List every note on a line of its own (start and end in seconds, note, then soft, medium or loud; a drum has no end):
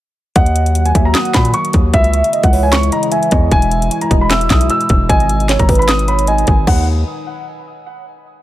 0.36 0.93 D#2 loud
0.36 1.92 D#3 medium
0.36 1.92 F#3 medium
0.36 1.92 A#3 medium
0.36 1.92 F#4 loud
0.36 0.73 D#5 loud
0.36 0.83 F#5 loud
0.36 kick loud
0.36 closed hi-hat medium
0.46 closed hi-hat soft
0.56 closed hi-hat medium
0.66 closed hi-hat medium
0.75 0.94 F#5 medium
0.75 closed hi-hat medium
0.85 1.03 G#5 medium
0.85 closed hi-hat medium
0.95 1.14 D#2 loud
0.95 1.14 E5 medium
0.95 kick loud
0.95 closed hi-hat medium
1.05 1.14 A#5 medium
1.14 1.51 F#5 medium
1.14 1.32 D#6 medium
1.14 snare loud
1.14 clap medium
1.14 closed hi-hat medium
1.25 closed hi-hat medium
1.34 1.53 A#2 loud
1.34 1.52 B5 medium
1.34 kick loud
1.34 snare loud
1.34 clap medium
1.34 closed hi-hat medium
1.45 closed hi-hat medium
1.54 1.72 C#6 medium
1.54 closed hi-hat medium
1.65 closed hi-hat medium
1.73 1.93 D#2 loud
1.73 kick loud
1.73 closed hi-hat medium
1.94 2.23 C#2 loud
1.94 3.50 C#3 medium
1.94 5.06 E3 medium
1.94 6.63 G#3 medium
1.94 3.50 E4 loud
1.94 2.31 E5 loud
1.94 2.41 E5 loud
1.94 kick loud
1.94 closed hi-hat medium
2.04 closed hi-hat soft
2.13 closed hi-hat medium
2.24 closed hi-hat medium
2.33 2.52 D#5 medium
2.33 closed hi-hat medium
2.43 2.90 C#2 loud
2.43 2.61 F#5 medium
2.43 kick loud
2.43 closed hi-hat medium
2.53 2.90 C#5 medium
2.53 open hi-hat medium
2.63 2.71 G#5 medium
2.72 2.90 C#6 loud
2.72 snare loud
2.72 clap medium
2.72 closed hi-hat medium
2.83 closed hi-hat medium
2.92 3.11 D#5 medium
2.92 3.10 A#5 medium
2.92 closed hi-hat medium
3.03 closed hi-hat medium
3.12 3.31 E5 medium
3.12 3.49 G#5 medium
3.12 closed hi-hat medium
3.23 closed hi-hat medium
3.31 3.51 E2 loud
3.31 3.51 D#5 medium
3.31 kick loud
3.31 closed hi-hat medium
3.51 3.89 E1 loud
3.51 6.64 B2 medium
3.51 5.08 E4 medium
3.51 3.89 E5 loud
3.51 3.99 G#5 loud
3.51 kick loud
3.51 closed hi-hat medium
3.62 closed hi-hat soft
3.71 closed hi-hat medium
3.82 closed hi-hat medium
3.91 4.10 G#5 medium
3.91 closed hi-hat medium
4.01 4.19 A#5 medium
4.01 closed hi-hat medium
4.11 4.49 E1 loud
4.11 4.29 D#5 medium
4.11 kick loud
4.11 closed hi-hat medium
4.21 4.29 B5 medium
4.30 4.68 E5 medium
4.30 4.48 E6 medium
4.30 snare loud
4.30 clap medium
4.30 closed hi-hat medium
4.41 closed hi-hat medium
4.50 4.69 B1 loud
4.50 4.68 D#6 medium
4.50 kick loud
4.50 snare loud
4.50 clap medium
4.50 closed hi-hat medium
4.61 closed hi-hat medium
4.70 4.88 E6 medium
4.70 closed hi-hat medium
4.81 closed hi-hat medium
4.89 5.09 E1 loud
4.89 kick loud
4.89 closed hi-hat medium
5.09 5.57 G#1 loud
5.09 6.66 D#3 medium
5.09 6.66 D#4 loud
5.09 5.47 D#5 loud
5.09 5.56 G#5 loud
5.09 kick loud
5.09 closed hi-hat medium
5.20 closed hi-hat soft
5.29 closed hi-hat medium
5.40 closed hi-hat medium
5.49 5.68 C#5 medium
5.49 snare loud
5.49 clap medium
5.49 closed hi-hat medium
5.59 5.68 G#1 loud
5.59 5.77 A#5 medium
5.59 kick loud
5.59 closed hi-hat medium
5.69 6.44 G#1 loud
5.69 6.06 B4 medium
5.69 kick loud
5.69 closed hi-hat medium
5.69 open hi-hat medium
5.75 5.87 B5 medium
5.75 closed hi-hat medium
5.82 closed hi-hat soft
5.88 6.06 D#6 loud
5.88 snare loud
5.88 clap medium
5.88 closed hi-hat medium
5.99 closed hi-hat medium
6.08 6.27 C#5 medium
6.08 6.26 B5 medium
6.08 closed hi-hat medium
6.19 closed hi-hat medium
6.27 6.47 D#5 loud
6.27 6.65 G#5 medium
6.27 closed hi-hat medium
6.38 closed hi-hat medium
6.47 6.67 G#1 loud
6.47 6.66 G#5 medium
6.47 kick loud
6.47 closed hi-hat medium
6.67 7.04 D#2 loud
6.67 6.86 F#5 medium
6.67 kick loud
6.67 crash medium